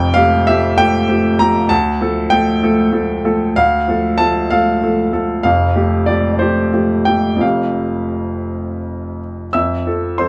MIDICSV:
0, 0, Header, 1, 2, 480
1, 0, Start_track
1, 0, Key_signature, -1, "major"
1, 0, Tempo, 621118
1, 1317, Time_signature, 6, 3, 24, 8
1, 3725, Tempo, 638298
1, 5165, Tempo, 700117
1, 7085, Tempo, 655022
1, 7634, End_track
2, 0, Start_track
2, 0, Title_t, "Grand piano"
2, 0, Program_c, 0, 0
2, 0, Note_on_c, 0, 29, 73
2, 0, Note_on_c, 0, 41, 75
2, 0, Note_on_c, 0, 79, 110
2, 12, Control_c, 0, 64, 127
2, 106, Note_on_c, 0, 77, 116
2, 109, Note_off_c, 0, 29, 0
2, 114, Note_on_c, 0, 53, 59
2, 115, Note_off_c, 0, 41, 0
2, 117, Note_off_c, 0, 79, 0
2, 120, Note_on_c, 0, 57, 63
2, 122, Note_on_c, 0, 67, 67
2, 331, Note_off_c, 0, 53, 0
2, 334, Note_off_c, 0, 57, 0
2, 335, Note_off_c, 0, 67, 0
2, 351, Note_off_c, 0, 77, 0
2, 363, Note_on_c, 0, 76, 104
2, 371, Note_on_c, 0, 53, 59
2, 375, Note_on_c, 0, 57, 53
2, 380, Note_on_c, 0, 67, 63
2, 580, Note_off_c, 0, 53, 0
2, 582, Note_off_c, 0, 57, 0
2, 585, Note_off_c, 0, 67, 0
2, 599, Note_off_c, 0, 76, 0
2, 600, Note_on_c, 0, 79, 124
2, 607, Note_on_c, 0, 57, 64
2, 609, Note_on_c, 0, 67, 66
2, 610, Note_on_c, 0, 53, 60
2, 819, Note_off_c, 0, 57, 0
2, 820, Note_off_c, 0, 53, 0
2, 820, Note_off_c, 0, 67, 0
2, 835, Note_on_c, 0, 53, 51
2, 835, Note_on_c, 0, 57, 57
2, 843, Note_on_c, 0, 67, 63
2, 1052, Note_off_c, 0, 53, 0
2, 1052, Note_off_c, 0, 57, 0
2, 1056, Note_off_c, 0, 67, 0
2, 1076, Note_on_c, 0, 82, 117
2, 1079, Note_off_c, 0, 79, 0
2, 1081, Note_on_c, 0, 53, 62
2, 1085, Note_on_c, 0, 57, 62
2, 1092, Note_on_c, 0, 67, 59
2, 1294, Note_off_c, 0, 53, 0
2, 1297, Note_off_c, 0, 57, 0
2, 1301, Note_off_c, 0, 67, 0
2, 1306, Note_on_c, 0, 81, 104
2, 1316, Note_off_c, 0, 82, 0
2, 1317, Note_on_c, 0, 38, 80
2, 1332, Control_c, 0, 64, 0
2, 1463, Control_c, 0, 64, 127
2, 1549, Note_off_c, 0, 38, 0
2, 1552, Note_on_c, 0, 53, 59
2, 1554, Note_on_c, 0, 57, 62
2, 1564, Note_on_c, 0, 69, 66
2, 1770, Note_off_c, 0, 53, 0
2, 1771, Note_off_c, 0, 57, 0
2, 1777, Note_off_c, 0, 69, 0
2, 1778, Note_on_c, 0, 79, 113
2, 1784, Note_on_c, 0, 53, 58
2, 1792, Note_off_c, 0, 81, 0
2, 1794, Note_on_c, 0, 57, 58
2, 1798, Note_on_c, 0, 69, 61
2, 2005, Note_off_c, 0, 53, 0
2, 2011, Note_off_c, 0, 57, 0
2, 2013, Note_off_c, 0, 69, 0
2, 2031, Note_on_c, 0, 53, 62
2, 2035, Note_on_c, 0, 69, 65
2, 2039, Note_on_c, 0, 57, 64
2, 2250, Note_off_c, 0, 57, 0
2, 2251, Note_off_c, 0, 53, 0
2, 2253, Note_off_c, 0, 69, 0
2, 2262, Note_on_c, 0, 57, 54
2, 2264, Note_on_c, 0, 53, 54
2, 2266, Note_on_c, 0, 69, 59
2, 2489, Note_off_c, 0, 57, 0
2, 2490, Note_off_c, 0, 53, 0
2, 2491, Note_off_c, 0, 69, 0
2, 2508, Note_on_c, 0, 53, 54
2, 2511, Note_on_c, 0, 69, 65
2, 2514, Note_on_c, 0, 57, 55
2, 2732, Note_off_c, 0, 53, 0
2, 2734, Note_off_c, 0, 69, 0
2, 2735, Note_off_c, 0, 57, 0
2, 2753, Note_on_c, 0, 77, 111
2, 2755, Note_off_c, 0, 79, 0
2, 2760, Note_on_c, 0, 38, 73
2, 2778, Control_c, 0, 64, 0
2, 2912, Control_c, 0, 64, 127
2, 2995, Note_off_c, 0, 38, 0
2, 2995, Note_on_c, 0, 53, 56
2, 3005, Note_on_c, 0, 57, 57
2, 3013, Note_on_c, 0, 69, 62
2, 3215, Note_off_c, 0, 53, 0
2, 3221, Note_off_c, 0, 57, 0
2, 3225, Note_off_c, 0, 69, 0
2, 3227, Note_on_c, 0, 81, 103
2, 3238, Note_off_c, 0, 77, 0
2, 3238, Note_on_c, 0, 53, 56
2, 3243, Note_on_c, 0, 57, 53
2, 3247, Note_on_c, 0, 69, 59
2, 3457, Note_off_c, 0, 53, 0
2, 3459, Note_off_c, 0, 57, 0
2, 3462, Note_off_c, 0, 69, 0
2, 3476, Note_off_c, 0, 81, 0
2, 3481, Note_on_c, 0, 77, 98
2, 3484, Note_on_c, 0, 53, 57
2, 3488, Note_on_c, 0, 57, 55
2, 3491, Note_on_c, 0, 69, 57
2, 3701, Note_off_c, 0, 53, 0
2, 3703, Note_off_c, 0, 57, 0
2, 3704, Note_off_c, 0, 69, 0
2, 3723, Note_off_c, 0, 77, 0
2, 3731, Note_on_c, 0, 53, 51
2, 3737, Note_on_c, 0, 57, 51
2, 3738, Note_on_c, 0, 69, 55
2, 3937, Note_off_c, 0, 53, 0
2, 3943, Note_off_c, 0, 57, 0
2, 3944, Note_off_c, 0, 69, 0
2, 3948, Note_on_c, 0, 53, 50
2, 3958, Note_on_c, 0, 57, 49
2, 3959, Note_on_c, 0, 69, 57
2, 4168, Note_off_c, 0, 53, 0
2, 4173, Note_off_c, 0, 57, 0
2, 4174, Note_off_c, 0, 69, 0
2, 4187, Note_on_c, 0, 77, 96
2, 4190, Note_on_c, 0, 29, 66
2, 4201, Note_on_c, 0, 41, 72
2, 4210, Control_c, 0, 64, 0
2, 4348, Control_c, 0, 64, 127
2, 4427, Note_off_c, 0, 29, 0
2, 4430, Note_on_c, 0, 67, 57
2, 4432, Note_on_c, 0, 57, 50
2, 4433, Note_off_c, 0, 41, 0
2, 4434, Note_on_c, 0, 53, 51
2, 4651, Note_off_c, 0, 67, 0
2, 4652, Note_off_c, 0, 53, 0
2, 4652, Note_off_c, 0, 57, 0
2, 4659, Note_on_c, 0, 74, 84
2, 4664, Note_on_c, 0, 53, 46
2, 4670, Note_on_c, 0, 57, 47
2, 4671, Note_on_c, 0, 67, 50
2, 4674, Note_off_c, 0, 77, 0
2, 4856, Note_off_c, 0, 74, 0
2, 4867, Note_on_c, 0, 74, 55
2, 4888, Note_off_c, 0, 53, 0
2, 4891, Note_off_c, 0, 57, 0
2, 4892, Note_off_c, 0, 67, 0
2, 4905, Note_on_c, 0, 72, 78
2, 4914, Note_on_c, 0, 53, 49
2, 4919, Note_on_c, 0, 57, 47
2, 4920, Note_off_c, 0, 74, 0
2, 4923, Note_on_c, 0, 67, 55
2, 5137, Note_off_c, 0, 53, 0
2, 5140, Note_off_c, 0, 57, 0
2, 5142, Note_off_c, 0, 67, 0
2, 5159, Note_on_c, 0, 53, 43
2, 5165, Note_on_c, 0, 57, 43
2, 5166, Note_on_c, 0, 67, 50
2, 5371, Note_off_c, 0, 53, 0
2, 5374, Note_off_c, 0, 57, 0
2, 5374, Note_off_c, 0, 67, 0
2, 5383, Note_on_c, 0, 79, 90
2, 5389, Note_off_c, 0, 72, 0
2, 5390, Note_on_c, 0, 53, 45
2, 5397, Note_on_c, 0, 57, 45
2, 5400, Note_on_c, 0, 67, 46
2, 5596, Note_off_c, 0, 53, 0
2, 5596, Note_on_c, 0, 41, 54
2, 5605, Note_off_c, 0, 57, 0
2, 5606, Note_on_c, 0, 53, 41
2, 5615, Note_off_c, 0, 67, 0
2, 5615, Note_on_c, 0, 57, 42
2, 5625, Note_on_c, 0, 67, 42
2, 5627, Note_on_c, 0, 77, 80
2, 5629, Note_on_c, 0, 29, 57
2, 5630, Note_off_c, 0, 79, 0
2, 5649, Control_c, 0, 64, 0
2, 5757, Control_c, 0, 64, 127
2, 6844, Note_off_c, 0, 77, 0
2, 7036, Note_off_c, 0, 41, 0
2, 7041, Note_off_c, 0, 53, 0
2, 7046, Note_off_c, 0, 57, 0
2, 7051, Note_off_c, 0, 67, 0
2, 7052, Note_off_c, 0, 29, 0
2, 7081, Note_on_c, 0, 88, 83
2, 7089, Note_on_c, 0, 76, 66
2, 7091, Note_on_c, 0, 41, 55
2, 7098, Control_c, 0, 64, 0
2, 7216, Control_c, 0, 64, 127
2, 7321, Note_off_c, 0, 41, 0
2, 7322, Note_on_c, 0, 53, 46
2, 7322, Note_on_c, 0, 60, 41
2, 7330, Note_on_c, 0, 69, 47
2, 7537, Note_off_c, 0, 76, 0
2, 7538, Note_off_c, 0, 60, 0
2, 7539, Note_off_c, 0, 53, 0
2, 7543, Note_off_c, 0, 69, 0
2, 7558, Note_on_c, 0, 84, 75
2, 7560, Note_on_c, 0, 53, 40
2, 7562, Note_off_c, 0, 88, 0
2, 7567, Note_on_c, 0, 72, 58
2, 7568, Note_on_c, 0, 60, 44
2, 7568, Note_on_c, 0, 69, 45
2, 7634, Note_off_c, 0, 53, 0
2, 7634, Note_off_c, 0, 60, 0
2, 7634, Note_off_c, 0, 69, 0
2, 7634, Note_off_c, 0, 72, 0
2, 7634, Note_off_c, 0, 84, 0
2, 7634, End_track
0, 0, End_of_file